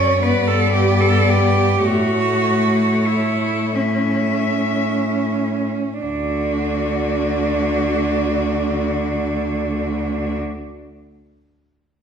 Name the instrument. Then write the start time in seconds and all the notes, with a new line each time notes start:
cello
Already playing: F#2 C#4 C#5 D5
0.23 G2 B3 B4 D5
0.48 A4
0.73 G4
1.01 A4
1.29 G4
1.84 A2 A3 F#4 C#5
3.07 E4
3.73 C#4 E5
6.02 D2 D3 D4 F#4